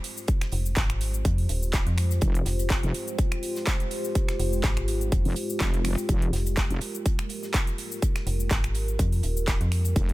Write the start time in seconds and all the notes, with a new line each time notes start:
Already playing: G#3 F4 G4 C5
0.04 closed hi-hat, open hi-hat
0.17 shaker
0.28 kick, closed hi-hat, shaker
0.41 finger snap, snare, closed hi-hat, shaker
0.52 F1, closed hi-hat, open hi-hat
0.66 shaker
0.77 G#1, kick, snare, clap, closed hi-hat, shaker
0.90 finger snap, closed hi-hat, shaker
1.01 closed hi-hat, open hi-hat
1.14 closed hi-hat, shaker
1.25 F2, kick, closed hi-hat, shaker
1.38 open hi-hat, shaker
1.49 D#1, closed hi-hat, open hi-hat
1.63 shaker
1.73 kick, snare, clap, closed hi-hat, shaker
1.87 F2, closed hi-hat, shaker
1.98 finger snap, closed hi-hat, open hi-hat
2.11 closed hi-hat, shaker
2.21 F1, kick, closed hi-hat, shaker
2.35 closed hi-hat, shaker
2.45 F1, snare, closed hi-hat, open hi-hat
2.59 closed hi-hat, shaker
2.70 kick, snare, clap, closed hi-hat, shaker
2.83 F1, closed hi-hat, shaker
2.94 closed hi-hat, open hi-hat
3.08 closed hi-hat, shaker
3.18 kick, closed hi-hat, shaker
3.32 finger snap, closed hi-hat, shaker
3.43 closed hi-hat, open hi-hat
3.56 snare, shaker
3.67 kick, snare, clap, closed hi-hat, shaker
3.80 closed hi-hat, shaker
3.91 closed hi-hat, open hi-hat
4.04 shaker
4.15 kick, closed hi-hat, shaker
4.28 finger snap, snare, closed hi-hat, shaker
4.39 F1, closed hi-hat, open hi-hat
4.53 shaker
4.63 G#1, kick, snare, clap, closed hi-hat, shaker
4.77 finger snap, closed hi-hat, shaker
4.88 closed hi-hat, open hi-hat
5.01 closed hi-hat, shaker
5.12 F1, kick, closed hi-hat, shaker
5.25 F1, open hi-hat, shaker
5.36 closed hi-hat, open hi-hat
5.50 shaker
5.60 F1, kick, snare, clap, closed hi-hat, shaker
5.74 closed hi-hat, shaker
5.85 finger snap, closed hi-hat, open hi-hat
5.98 closed hi-hat, shaker
6.09 F1 A#4, kick, closed hi-hat, shaker
6.22 closed hi-hat, shaker
6.33 F1, snare, closed hi-hat, open hi-hat
6.46 closed hi-hat, shaker
6.57 kick, snare, clap, closed hi-hat, shaker
6.70 F1, closed hi-hat, shaker
6.81 closed hi-hat, open hi-hat
6.95 closed hi-hat, shaker
7.06 kick, closed hi-hat, shaker
7.19 finger snap, closed hi-hat, shaker
7.29 closed hi-hat, open hi-hat
7.43 snare, shaker
7.54 kick, snare, clap, closed hi-hat, shaker
7.67 closed hi-hat, shaker
7.78 closed hi-hat, open hi-hat
7.92 shaker
8.02 kick, closed hi-hat, shaker
8.16 finger snap, snare, closed hi-hat, shaker
8.27 F1, closed hi-hat, open hi-hat
8.40 shaker
8.51 G#1, kick, snare, clap, closed hi-hat, shaker
8.64 finger snap, closed hi-hat, shaker
8.75 closed hi-hat, open hi-hat
8.88 closed hi-hat, shaker
8.99 F2, kick, closed hi-hat, shaker
9.12 open hi-hat, shaker
9.23 D#1, closed hi-hat, open hi-hat
9.37 shaker
9.47 kick, snare, clap, closed hi-hat, shaker
9.61 F2, closed hi-hat, shaker
9.72 finger snap, closed hi-hat, open hi-hat
9.85 closed hi-hat, shaker
9.96 F1, kick, closed hi-hat, shaker
10.09 closed hi-hat, shaker